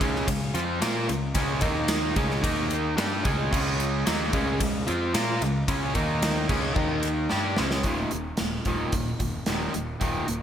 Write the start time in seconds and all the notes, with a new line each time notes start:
0.00 C#2 C#3 G#3 C#4, kick, ride
0.15 snare
0.28 C#2 C#3 G#3, kick, ride
0.54 F2 F3 C4 F4, ride
0.81 A#2 A#3 F4 A#4, snare, ride
1.08 C#2 C#3 G#3, ride
1.34 C#2 C#3 G#3 C#4, kick, ride
1.61 D#2 D#3 A#3 D#4, kick, ride
1.88 snare, ride
2.16 C#2 C#3 G#3 C#4, kick, ride
2.31 snare
2.42 D#2 D#3 A#3 D#4, kick, ride
2.71 ride
2.97 G2 G3 D4 G4, snare, ride
3.24 C#2 C#3 G#3 C#4, kick, ride
3.52 C#2 C#3 G#3 C#4, kick, crash
3.80 ride
4.06 D#2 D#3 A#3 D#4, snare, ride
4.33 C#2 C#3 G#3 C#4, kick, ride
4.60 C#2 C#3 G#3, kick, ride
4.87 F2 F3 C4 F4, ride
5.14 A#2 A#3 F4 A#4, snare, ride
5.41 C#2 C#3 G#3, ride
5.68 C#2 C#3 G#3 C#4, kick, ride
5.94 D#2 D#3 A#3 D#4, kick, ride
6.22 snare, ride
6.49 C#2 C#3 G#3 C#4, kick, crash
6.75 D#2 D#3 A#3 D#4, kick
7.03 ride
7.29 G2 G3 D4 G4, snare
7.57 C#2 C#3 G#3 C#4, snare
7.71 snare
7.83 D#1 D#2 A#2 D#3, kick, closed hi-hat
8.11 D#1 D#2 A#2, closed hi-hat
8.37 D#1 D#2 A#2, snare, closed hi-hat
8.65 D#1 D#2 A#2 D#3, kick, closed hi-hat
8.92 D#1 D#2 A#2, kick, closed hi-hat
9.19 D#1 D#2 A#2, kick, closed hi-hat
9.46 D#1 D#2 A#2 D#3, snare, closed hi-hat
9.74 D#1 D#2 A#2, closed hi-hat
10.00 D#1 D#2 A#2 D#3, kick, closed hi-hat
10.28 D#1 D#2 A#2, closed hi-hat